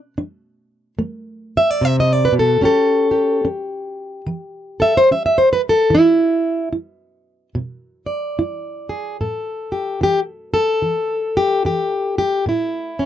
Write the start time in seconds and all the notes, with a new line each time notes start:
Already playing: D3
0.18 D4
0.99 A3
1.57 E5
1.71 D5
1.81 C3 E5
2.00 D#5
2.13 D5
2.25 B4
2.32 B2
2.39 A4
2.61 A3 C#4 G4
2.65 A4
3.11 G4
3.45 C#4
4.27 E3
4.80 A4 E5
4.97 C5
5.11 C#4 E5
5.26 E5
5.38 C5
5.53 B4
5.69 A4
5.90 E3
5.95 E4
6.73 E4
7.55 B2
8.06 D5
8.39 E4
8.89 G#4
9.21 A2 A4
9.72 G4
10.01 E3 G4
10.54 A4
10.82 E3
11.37 G4
11.65 E3 G4
12.18 G4
12.46 A2 E4
12.99 C#4